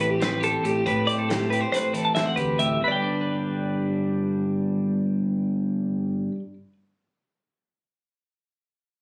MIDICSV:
0, 0, Header, 1, 5, 480
1, 0, Start_track
1, 0, Key_signature, 1, "major"
1, 0, Tempo, 431344
1, 970, Time_signature, 9, 3, 24, 8
1, 10035, End_track
2, 0, Start_track
2, 0, Title_t, "Clean electric guitar"
2, 0, Program_c, 0, 27
2, 9, Note_on_c, 0, 71, 67
2, 117, Note_off_c, 0, 71, 0
2, 117, Note_on_c, 0, 67, 65
2, 252, Note_off_c, 0, 67, 0
2, 252, Note_on_c, 0, 71, 81
2, 482, Note_off_c, 0, 71, 0
2, 487, Note_on_c, 0, 69, 71
2, 726, Note_off_c, 0, 69, 0
2, 726, Note_on_c, 0, 67, 70
2, 956, Note_off_c, 0, 67, 0
2, 956, Note_on_c, 0, 71, 79
2, 1191, Note_on_c, 0, 74, 69
2, 1203, Note_off_c, 0, 71, 0
2, 1318, Note_on_c, 0, 69, 61
2, 1321, Note_off_c, 0, 74, 0
2, 1440, Note_off_c, 0, 69, 0
2, 1440, Note_on_c, 0, 67, 72
2, 1668, Note_off_c, 0, 67, 0
2, 1673, Note_on_c, 0, 71, 63
2, 1788, Note_off_c, 0, 71, 0
2, 1788, Note_on_c, 0, 72, 67
2, 1905, Note_off_c, 0, 72, 0
2, 1918, Note_on_c, 0, 72, 88
2, 2159, Note_off_c, 0, 72, 0
2, 2159, Note_on_c, 0, 69, 65
2, 2280, Note_on_c, 0, 81, 61
2, 2284, Note_off_c, 0, 69, 0
2, 2386, Note_off_c, 0, 81, 0
2, 2390, Note_on_c, 0, 76, 75
2, 2513, Note_off_c, 0, 76, 0
2, 2513, Note_on_c, 0, 78, 69
2, 2627, Note_on_c, 0, 71, 68
2, 2641, Note_off_c, 0, 78, 0
2, 2878, Note_off_c, 0, 71, 0
2, 2882, Note_on_c, 0, 76, 70
2, 3126, Note_off_c, 0, 76, 0
2, 3160, Note_on_c, 0, 71, 57
2, 3204, Note_on_c, 0, 74, 63
2, 3249, Note_on_c, 0, 79, 63
2, 7025, Note_off_c, 0, 71, 0
2, 7069, Note_off_c, 0, 74, 0
2, 7114, Note_off_c, 0, 79, 0
2, 10035, End_track
3, 0, Start_track
3, 0, Title_t, "Clean electric guitar"
3, 0, Program_c, 1, 27
3, 0, Note_on_c, 1, 45, 60
3, 0, Note_on_c, 1, 52, 56
3, 0, Note_on_c, 1, 57, 55
3, 0, Note_on_c, 1, 60, 56
3, 0, Note_on_c, 1, 67, 56
3, 0, Note_on_c, 1, 71, 54
3, 214, Note_off_c, 1, 60, 0
3, 227, Note_on_c, 1, 60, 56
3, 444, Note_off_c, 1, 67, 0
3, 448, Note_on_c, 1, 67, 50
3, 692, Note_off_c, 1, 45, 0
3, 706, Note_on_c, 1, 45, 69
3, 712, Note_off_c, 1, 67, 0
3, 716, Note_on_c, 1, 67, 54
3, 927, Note_off_c, 1, 52, 0
3, 929, Note_off_c, 1, 45, 0
3, 954, Note_on_c, 1, 45, 67
3, 956, Note_off_c, 1, 67, 0
3, 961, Note_on_c, 1, 67, 51
3, 987, Note_off_c, 1, 71, 0
3, 994, Note_off_c, 1, 57, 0
3, 1194, Note_off_c, 1, 60, 0
3, 1208, Note_on_c, 1, 60, 57
3, 1433, Note_on_c, 1, 57, 49
3, 1685, Note_off_c, 1, 67, 0
3, 1705, Note_on_c, 1, 67, 59
3, 1946, Note_on_c, 1, 71, 62
3, 2151, Note_on_c, 1, 52, 61
3, 2387, Note_off_c, 1, 60, 0
3, 2401, Note_on_c, 1, 60, 49
3, 2631, Note_off_c, 1, 67, 0
3, 2644, Note_on_c, 1, 67, 50
3, 2872, Note_off_c, 1, 45, 0
3, 2878, Note_off_c, 1, 67, 0
3, 2885, Note_on_c, 1, 45, 62
3, 2891, Note_on_c, 1, 67, 56
3, 3092, Note_off_c, 1, 52, 0
3, 3092, Note_off_c, 1, 57, 0
3, 3099, Note_off_c, 1, 45, 0
3, 3102, Note_off_c, 1, 67, 0
3, 3109, Note_off_c, 1, 71, 0
3, 3125, Note_off_c, 1, 60, 0
3, 3130, Note_on_c, 1, 43, 60
3, 3239, Note_on_c, 1, 55, 55
3, 3360, Note_on_c, 1, 62, 52
3, 3574, Note_on_c, 1, 71, 49
3, 7039, Note_off_c, 1, 43, 0
3, 7148, Note_off_c, 1, 55, 0
3, 7270, Note_off_c, 1, 62, 0
3, 7484, Note_off_c, 1, 71, 0
3, 10035, End_track
4, 0, Start_track
4, 0, Title_t, "Fingered electric bass"
4, 0, Program_c, 2, 33
4, 0, Note_on_c, 2, 33, 88
4, 609, Note_off_c, 2, 33, 0
4, 718, Note_on_c, 2, 33, 76
4, 934, Note_off_c, 2, 33, 0
4, 966, Note_on_c, 2, 45, 85
4, 1809, Note_off_c, 2, 45, 0
4, 2640, Note_on_c, 2, 38, 82
4, 3065, Note_off_c, 2, 38, 0
4, 3126, Note_on_c, 2, 31, 85
4, 6991, Note_off_c, 2, 31, 0
4, 10035, End_track
5, 0, Start_track
5, 0, Title_t, "Drums"
5, 0, Note_on_c, 9, 42, 65
5, 109, Note_off_c, 9, 42, 0
5, 240, Note_on_c, 9, 42, 78
5, 250, Note_on_c, 9, 38, 94
5, 351, Note_off_c, 9, 42, 0
5, 361, Note_off_c, 9, 38, 0
5, 479, Note_on_c, 9, 42, 59
5, 590, Note_off_c, 9, 42, 0
5, 723, Note_on_c, 9, 42, 56
5, 834, Note_off_c, 9, 42, 0
5, 963, Note_on_c, 9, 36, 82
5, 963, Note_on_c, 9, 42, 60
5, 1074, Note_off_c, 9, 36, 0
5, 1074, Note_off_c, 9, 42, 0
5, 1215, Note_on_c, 9, 42, 57
5, 1326, Note_off_c, 9, 42, 0
5, 1450, Note_on_c, 9, 42, 74
5, 1460, Note_on_c, 9, 38, 105
5, 1561, Note_off_c, 9, 42, 0
5, 1571, Note_off_c, 9, 38, 0
5, 1697, Note_on_c, 9, 42, 53
5, 1809, Note_off_c, 9, 42, 0
5, 1934, Note_on_c, 9, 42, 77
5, 1944, Note_on_c, 9, 38, 36
5, 2046, Note_off_c, 9, 42, 0
5, 2056, Note_off_c, 9, 38, 0
5, 2164, Note_on_c, 9, 42, 60
5, 2275, Note_off_c, 9, 42, 0
5, 2401, Note_on_c, 9, 42, 69
5, 2411, Note_on_c, 9, 38, 91
5, 2512, Note_off_c, 9, 42, 0
5, 2522, Note_off_c, 9, 38, 0
5, 2642, Note_on_c, 9, 42, 59
5, 2645, Note_on_c, 9, 36, 74
5, 2753, Note_off_c, 9, 42, 0
5, 2756, Note_off_c, 9, 36, 0
5, 2885, Note_on_c, 9, 42, 61
5, 2997, Note_off_c, 9, 42, 0
5, 10035, End_track
0, 0, End_of_file